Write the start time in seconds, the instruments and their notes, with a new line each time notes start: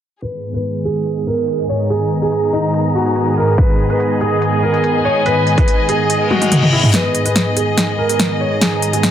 0.22 supersaw synth G#2 D#3 B3 G#4, string section G#4, felt piano B4, closed hi-hat
0.43 closed hi-hat
0.54 felt piano B4, closed hi-hat
0.64 closed hi-hat
0.85 felt piano G#4, closed hi-hat
1.06 string section D#5, closed hi-hat
1.27 felt piano A#4
1.38 closed hi-hat
1.48 closed hi-hat
1.69 felt piano C#5
1.79 string section A#5
1.90 felt piano G#4, closed hi-hat
2.11 closed hi-hat
2.22 felt piano G#4, closed hi-hat
2.32 closed hi-hat
2.53 felt piano D#4, closed hi-hat
2.74 closed hi-hat
2.95 felt piano F#4
3.06 closed hi-hat
3.16 closed hi-hat
3.37 felt piano A#4
3.58 felt piano B4, kick, closed hi-hat
3.79 closed hi-hat
3.90 felt piano B4, closed hi-hat
4.00 closed hi-hat
4.21 felt piano G#4, closed hi-hat
4.37 string section G#5
4.42 closed hi-hat
4.63 felt piano A#4
4.74 closed hi-hat
4.84 closed hi-hat
5.05 felt piano C#5
5.26 felt piano B4, closed hi-hat
5.47 closed hi-hat
5.58 felt piano B4, kick, closed hi-hat
5.68 closed hi-hat
5.89 felt piano G#4, closed hi-hat
6.10 closed hi-hat, reverse cymbal
6.31 felt piano F#4, high tom
6.42 closed hi-hat, high tom
6.52 closed hi-hat, mid tom
6.63 mid tom
6.73 felt piano E4
6.84 mid tom
6.94 supersaw synth G#2 D#3 B3 G#4, felt piano B4, snare, closed hi-hat, riser
7.15 closed hi-hat
7.25 felt piano B4, closed hi-hat
7.36 snare, closed hi-hat
7.57 felt piano G#4, closed hi-hat
7.78 snare, closed hi-hat
7.98 felt piano A#4
8.09 closed hi-hat
8.20 snare, closed hi-hat
8.41 felt piano C#5
8.53 string section A#5
8.61 felt piano G#4, snare, closed hi-hat
8.82 closed hi-hat
8.93 felt piano G#4, closed hi-hat
9.03 snare, closed hi-hat